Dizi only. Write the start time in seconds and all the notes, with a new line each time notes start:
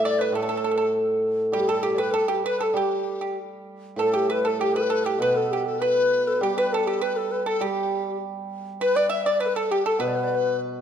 0.04 D5
0.19 B4
0.32 B4
0.37 A4
0.74 A4 B4
1.52 G4
1.67 A4
1.83 G4
1.93 B4 D5
2.11 A4
2.29 G4
2.43 B4
2.59 A4
2.74 G4
3.97 A4 B4
4.44 A4
4.60 G4
4.74 B4
5.05 G4
5.20 B4
5.35 A4
5.66 A4
5.79 B4
6.27 A4
6.42 G4
6.58 B4
6.73 A4 B4
7.02 B4
7.18 A4
7.47 A4
7.62 A4
7.67 G4
8.81 B4
9.10 E5
9.26 D5
9.41 B4
9.46 A4 B4
9.55 A4
9.71 G4
9.87 A4
10.00 B4
10.08 D5
10.15 B4
10.24 D5
10.31 B4 D5